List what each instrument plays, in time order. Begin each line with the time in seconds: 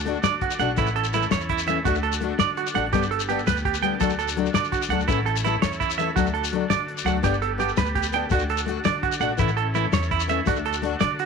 Already playing: upright bass D2, transistor combo organ D4 F#4 A4
0.05 steel-string acoustic guitar A3 D4 F#4, closed hi-hat
0.23 upright bass D3, clean electric guitar D5, snare, closed hi-hat, shekere
0.41 clean electric guitar F#4, kick, closed hi-hat
0.51 shekere
0.59 upright bass B1, steel-string acoustic guitar A3 D4 F#4, clean electric guitar F#5, snare, closed hi-hat, shekere
0.76 upright bass A1, steel-string acoustic guitar E3 A3 C#4, transistor combo organ C#4 E4, clean electric guitar E4, kick, closed hi-hat, shekere
0.87 shekere
0.96 clean electric guitar A4, closed hi-hat
1.04 shekere
1.13 steel-string acoustic guitar E3 A3 C#4, clean electric guitar E4, closed hi-hat, shekere
1.22 shekere
1.31 upright bass E2, clean electric guitar C#5, snare, closed hi-hat, shekere
1.41 shekere
1.49 clean electric guitar E4, kick, closed hi-hat
1.58 shekere
1.67 steel-string acoustic guitar E3 A3 C#4, clean electric guitar E5, closed hi-hat, shekere
1.85 upright bass D2, steel-string acoustic guitar A3 D4 F#4, transistor combo organ D4 F#4, clean electric guitar F#4, kick, closed hi-hat, shekere
1.95 shekere
2.03 clean electric guitar A4, closed hi-hat
2.13 shekere
2.21 steel-string acoustic guitar A3 D4 F#4, closed hi-hat
2.39 upright bass D3, clean electric guitar D5, snare, closed hi-hat, shekere
2.57 clean electric guitar F#4, closed hi-hat
2.67 shekere
2.74 upright bass A1, steel-string acoustic guitar A3 D4, clean electric guitar F#5, muted steel-string acoustic guitar stroke, snare, closed hi-hat
2.93 upright bass G1, steel-string acoustic guitar G3 B3 D4 A4, transistor combo organ B3 G4, clean electric guitar G4, kick, closed hi-hat, shekere
3.03 shekere
3.11 clean electric guitar A4, closed hi-hat
3.20 shekere
3.29 steel-string acoustic guitar B3 D4 A4, clean electric guitar G4, closed hi-hat, shekere
3.39 shekere
3.47 upright bass D2, clean electric guitar B4, snare, closed hi-hat, shekere
3.57 shekere
3.65 clean electric guitar G4, kick, closed hi-hat
3.74 shekere
3.82 steel-string acoustic guitar G3 B3 D4 A4, clean electric guitar G5, closed hi-hat, shekere
3.99 upright bass D2, steel-string acoustic guitar F#3 A3 D4 A4, transistor combo organ D4 F#4, clean electric guitar A4, kick, closed hi-hat, shekere
4.10 shekere
4.19 clean electric guitar A4, closed hi-hat, shekere
4.28 shekere
4.36 steel-string acoustic guitar F#3 A3 D4 A4, closed hi-hat
4.46 shekere
4.54 upright bass D3, clean electric guitar D5, snare, closed hi-hat, shekere
4.64 shekere
4.72 clean electric guitar F#4, kick, closed hi-hat, shekere
4.82 shekere
4.89 upright bass D2, steel-string acoustic guitar F#3 A3 D4 A4, clean electric guitar F#5, snare, closed hi-hat
5.00 shekere
5.07 upright bass A1, steel-string acoustic guitar E3 A3 C#4 A4, transistor combo organ C#4 E4, clean electric guitar E4, kick, closed hi-hat, shekere
5.26 clean electric guitar A4, closed hi-hat
5.36 shekere
5.44 steel-string acoustic guitar E3 A3 A4, clean electric guitar E4, muted steel-string acoustic guitar stroke, closed hi-hat, shekere
5.62 upright bass E2, clean electric guitar C#5, snare, closed hi-hat, shekere
5.73 shekere
5.80 clean electric guitar E4, kick, closed hi-hat, shekere
5.90 shekere
5.98 steel-string acoustic guitar E3 A3 C#4 A4, clean electric guitar E5, closed hi-hat, shekere
6.16 upright bass D2, steel-string acoustic guitar F#3 A3 D4 A4, transistor combo organ D4 F#4, clean electric guitar F#4, kick, closed hi-hat, shekere
6.26 shekere
6.34 clean electric guitar A4, closed hi-hat
6.44 shekere
6.52 steel-string acoustic guitar F#3 A3 D4 A4, closed hi-hat
6.70 upright bass D3, clean electric guitar D5, snare, closed hi-hat, shekere
6.88 closed hi-hat
6.98 shekere
7.05 upright bass D2, steel-string acoustic guitar F#3 A3 D4 A4, clean electric guitar F#5, closed hi-hat, shekere
7.23 upright bass G1, steel-string acoustic guitar B3 D4 A4, transistor combo organ B3 G4, clean electric guitar G4, kick, closed hi-hat, shekere
7.34 shekere
7.42 clean electric guitar A4, closed hi-hat
7.58 steel-string acoustic guitar B3 A4, clean electric guitar G4, muted steel-string acoustic guitar stroke, closed hi-hat, shekere
7.68 shekere
7.77 upright bass D2, clean electric guitar B4, snare, closed hi-hat, shekere
7.86 shekere
7.95 clean electric guitar G4, kick, closed hi-hat
8.03 shekere
8.12 steel-string acoustic guitar B3 D4 A4, clean electric guitar G5, closed hi-hat, shekere
8.30 upright bass D2, steel-string acoustic guitar A3 D4 F#4, transistor combo organ D4 F#4, clean electric guitar F#4, kick, closed hi-hat, shekere
8.39 shekere
8.49 clean electric guitar A4, closed hi-hat
8.57 shekere
8.66 steel-string acoustic guitar A3 F#4, closed hi-hat
8.85 upright bass D3, clean electric guitar D5, snare, closed hi-hat, shekere
9.03 clean electric guitar F#4, kick, closed hi-hat
9.12 shekere
9.20 upright bass A#1, steel-string acoustic guitar A3 D4 F#4, clean electric guitar F#5, closed hi-hat, shekere
9.37 upright bass A1, steel-string acoustic guitar E3 A3, transistor combo organ C#4 E4, clean electric guitar E4, muted steel-string acoustic guitar stroke, kick, closed hi-hat, shekere
9.48 shekere
9.57 clean electric guitar A4, closed hi-hat
9.74 steel-string acoustic guitar E3 A3 C#4, clean electric guitar E4, closed hi-hat, shekere
9.92 upright bass E2, clean electric guitar C#5, snare, closed hi-hat, shekere
10.03 shekere
10.11 clean electric guitar E4, kick, closed hi-hat
10.20 shekere
10.28 steel-string acoustic guitar E3 A3 C#4, clean electric guitar E5, closed hi-hat, shekere
10.46 upright bass D2, steel-string acoustic guitar A3 D4 F#4, transistor combo organ D4 F#4, clean electric guitar F#4, kick, closed hi-hat, shekere
10.56 shekere
10.65 clean electric guitar A4, closed hi-hat
10.73 shekere
10.82 steel-string acoustic guitar A3 D4 F#4, closed hi-hat
11.00 upright bass D3, clean electric guitar D5, snare, closed hi-hat, shekere
11.19 clean electric guitar F#4, closed hi-hat